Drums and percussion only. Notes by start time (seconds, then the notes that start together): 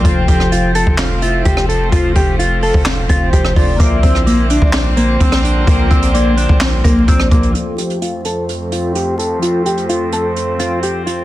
0.05 kick, closed hi-hat
0.28 kick, closed hi-hat
0.40 cross-stick
0.52 closed hi-hat
0.75 closed hi-hat
0.87 kick
0.98 snare, clap, closed hi-hat
1.22 closed hi-hat
1.45 kick, closed hi-hat
1.57 cross-stick
1.69 closed hi-hat
1.92 kick, closed hi-hat
2.15 kick, closed hi-hat
2.39 closed hi-hat
2.62 open hi-hat
2.74 kick
2.85 snare, clap
3.09 kick, closed hi-hat
3.33 kick, closed hi-hat
3.45 cross-stick
3.56 kick, open hi-hat
3.80 kick, closed hi-hat
4.03 kick, closed hi-hat
4.15 cross-stick
4.27 closed hi-hat
4.50 closed hi-hat
4.62 kick
4.73 snare, clap, closed hi-hat
4.97 closed hi-hat
5.20 kick, closed hi-hat
5.32 cross-stick, snare
5.45 closed hi-hat
5.67 kick, closed hi-hat
5.91 kick, closed hi-hat
6.03 closed hi-hat
6.15 closed hi-hat
6.37 closed hi-hat
6.49 kick
6.60 snare, clap, closed hi-hat
6.84 kick, closed hi-hat
7.08 kick, closed hi-hat
7.20 cross-stick
7.31 kick, closed hi-hat
7.43 closed hi-hat
7.55 closed hi-hat
7.78 closed hi-hat
7.90 closed hi-hat
8.02 closed hi-hat
8.25 closed hi-hat
8.49 closed hi-hat
8.72 closed hi-hat
8.95 closed hi-hat
9.19 closed hi-hat
9.42 closed hi-hat
9.66 closed hi-hat
9.77 closed hi-hat
9.89 closed hi-hat
10.12 closed hi-hat
10.36 closed hi-hat
10.59 closed hi-hat
10.83 closed hi-hat
11.07 closed hi-hat